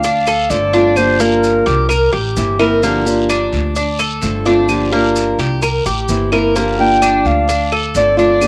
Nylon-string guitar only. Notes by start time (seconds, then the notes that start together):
0.04 muted nylon-string guitar stroke
0.49 D3 A3 C4 F4
0.73 A3 C4 F4
0.96 D3 F3 A#3 D4 G4
1.20 F3 A#3 D4 G4
1.90 muted nylon-string guitar stroke
2.36 E3 A#3 C4 E4
2.59 E3 A#3 C4 E4
2.82 D3 F3 A#3 D4 G4
3.06 F3 A#3 D4 G4
3.76 muted nylon-string guitar stroke
4.22 D3 A3 C4 F4
4.46 A3 C4 F4
4.69 D3 F3 A#3 D4 G4
4.92 F3 A#3 D4 G4
5.62 muted nylon-string guitar stroke
6.08 E3 A#3 C4 E4
6.32 E3 A#3 C4 E4
6.55 D3 F3 A#3 D4 G4
6.79 F3 A#3 D4 G4
7.49 muted nylon-string guitar stroke
7.95 D3 A3 C4 F4
8.17 A3 C4 F4
8.41 D3 F3 A#3 D4 G4